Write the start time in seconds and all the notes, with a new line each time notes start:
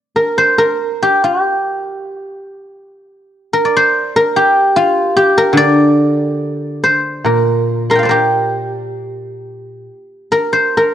0.16 A#4
0.38 C5
0.58 A#4
1.02 G4
1.24 F4
1.41 G4
3.53 A#4
3.65 D5
3.77 C5
4.16 A#4
4.36 G4
4.76 F4
5.17 G4
5.38 A#4
5.53 D3
5.57 D5
6.84 C5
7.24 A#2 A#4
7.90 A#4 A#5 C6
7.95 F5 G5
8.03 C5 D5
8.09 G4 A#4
10.32 A#4
10.53 C5
10.77 A#4